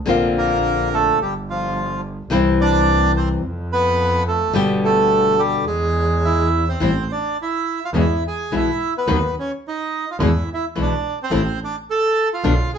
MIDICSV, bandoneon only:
0, 0, Header, 1, 2, 480
1, 0, Start_track
1, 0, Tempo, 558140
1, 64, Time_signature, 4, 2, 24, 8
1, 4383, Tempo, 569260
1, 7743, Tempo, 559701
1, 10917, End_track
2, 0, Start_track
2, 0, Title_t, "Bandoneon"
2, 0, Program_c, 0, 23
2, 323, Note_on_c, 0, 58, 80
2, 331, Note_on_c, 0, 70, 94
2, 765, Note_off_c, 0, 58, 0
2, 807, Note_on_c, 0, 57, 71
2, 811, Note_on_c, 0, 69, 100
2, 816, Note_off_c, 0, 70, 0
2, 1024, Note_off_c, 0, 57, 0
2, 1026, Note_off_c, 0, 69, 0
2, 1046, Note_on_c, 0, 67, 73
2, 1053, Note_on_c, 0, 55, 64
2, 1151, Note_off_c, 0, 67, 0
2, 1157, Note_off_c, 0, 55, 0
2, 1291, Note_on_c, 0, 65, 81
2, 1299, Note_on_c, 0, 53, 66
2, 1728, Note_off_c, 0, 65, 0
2, 1732, Note_off_c, 0, 53, 0
2, 2245, Note_on_c, 0, 74, 109
2, 2252, Note_on_c, 0, 62, 83
2, 2681, Note_off_c, 0, 74, 0
2, 2685, Note_off_c, 0, 62, 0
2, 2723, Note_on_c, 0, 72, 88
2, 2728, Note_on_c, 0, 60, 66
2, 2828, Note_off_c, 0, 72, 0
2, 2831, Note_off_c, 0, 60, 0
2, 3204, Note_on_c, 0, 71, 111
2, 3214, Note_on_c, 0, 59, 80
2, 3640, Note_off_c, 0, 71, 0
2, 3645, Note_off_c, 0, 59, 0
2, 3682, Note_on_c, 0, 69, 83
2, 3688, Note_on_c, 0, 57, 63
2, 3897, Note_off_c, 0, 69, 0
2, 3900, Note_off_c, 0, 57, 0
2, 4162, Note_on_c, 0, 57, 89
2, 4170, Note_on_c, 0, 69, 99
2, 4599, Note_off_c, 0, 57, 0
2, 4628, Note_on_c, 0, 55, 67
2, 4634, Note_on_c, 0, 67, 89
2, 4649, Note_off_c, 0, 69, 0
2, 4848, Note_off_c, 0, 55, 0
2, 4851, Note_off_c, 0, 67, 0
2, 4866, Note_on_c, 0, 68, 79
2, 4872, Note_on_c, 0, 56, 57
2, 5354, Note_on_c, 0, 76, 82
2, 5357, Note_on_c, 0, 64, 70
2, 5556, Note_off_c, 0, 68, 0
2, 5560, Note_off_c, 0, 56, 0
2, 5689, Note_off_c, 0, 64, 0
2, 5724, Note_off_c, 0, 76, 0
2, 5725, Note_on_c, 0, 72, 83
2, 5726, Note_on_c, 0, 60, 67
2, 6053, Note_off_c, 0, 60, 0
2, 6088, Note_off_c, 0, 72, 0
2, 6088, Note_on_c, 0, 74, 72
2, 6089, Note_on_c, 0, 62, 57
2, 6302, Note_off_c, 0, 74, 0
2, 6303, Note_off_c, 0, 62, 0
2, 6340, Note_on_c, 0, 64, 59
2, 6349, Note_on_c, 0, 76, 81
2, 6660, Note_off_c, 0, 64, 0
2, 6699, Note_off_c, 0, 76, 0
2, 6704, Note_on_c, 0, 65, 56
2, 6704, Note_on_c, 0, 77, 71
2, 6750, Note_off_c, 0, 65, 0
2, 6750, Note_off_c, 0, 77, 0
2, 6820, Note_on_c, 0, 64, 56
2, 6831, Note_on_c, 0, 76, 75
2, 7029, Note_off_c, 0, 64, 0
2, 7035, Note_off_c, 0, 76, 0
2, 7061, Note_on_c, 0, 68, 59
2, 7070, Note_on_c, 0, 80, 77
2, 7269, Note_off_c, 0, 68, 0
2, 7296, Note_off_c, 0, 80, 0
2, 7305, Note_on_c, 0, 64, 68
2, 7311, Note_on_c, 0, 76, 84
2, 7622, Note_off_c, 0, 64, 0
2, 7625, Note_off_c, 0, 76, 0
2, 7654, Note_on_c, 0, 59, 58
2, 7655, Note_on_c, 0, 71, 77
2, 7978, Note_off_c, 0, 59, 0
2, 7978, Note_off_c, 0, 71, 0
2, 8007, Note_on_c, 0, 61, 62
2, 8019, Note_on_c, 0, 73, 78
2, 8111, Note_off_c, 0, 61, 0
2, 8120, Note_off_c, 0, 73, 0
2, 8253, Note_on_c, 0, 63, 69
2, 8264, Note_on_c, 0, 75, 90
2, 8576, Note_off_c, 0, 63, 0
2, 8617, Note_off_c, 0, 75, 0
2, 8621, Note_on_c, 0, 65, 60
2, 8633, Note_on_c, 0, 77, 71
2, 8668, Note_off_c, 0, 65, 0
2, 8677, Note_off_c, 0, 77, 0
2, 8749, Note_on_c, 0, 64, 66
2, 8754, Note_on_c, 0, 76, 73
2, 8954, Note_off_c, 0, 64, 0
2, 8957, Note_off_c, 0, 76, 0
2, 8989, Note_on_c, 0, 64, 62
2, 8996, Note_on_c, 0, 76, 86
2, 9089, Note_off_c, 0, 64, 0
2, 9094, Note_off_c, 0, 76, 0
2, 9224, Note_on_c, 0, 62, 69
2, 9240, Note_on_c, 0, 74, 81
2, 9542, Note_off_c, 0, 62, 0
2, 9551, Note_off_c, 0, 74, 0
2, 9580, Note_on_c, 0, 60, 66
2, 9590, Note_on_c, 0, 72, 93
2, 9897, Note_off_c, 0, 60, 0
2, 9902, Note_off_c, 0, 72, 0
2, 9935, Note_on_c, 0, 62, 67
2, 9943, Note_on_c, 0, 74, 85
2, 10036, Note_off_c, 0, 62, 0
2, 10042, Note_off_c, 0, 74, 0
2, 10163, Note_on_c, 0, 69, 78
2, 10171, Note_on_c, 0, 81, 104
2, 10490, Note_off_c, 0, 69, 0
2, 10494, Note_off_c, 0, 81, 0
2, 10531, Note_on_c, 0, 65, 62
2, 10542, Note_on_c, 0, 77, 84
2, 10854, Note_off_c, 0, 65, 0
2, 10860, Note_off_c, 0, 77, 0
2, 10878, Note_on_c, 0, 68, 71
2, 10917, Note_off_c, 0, 68, 0
2, 10917, End_track
0, 0, End_of_file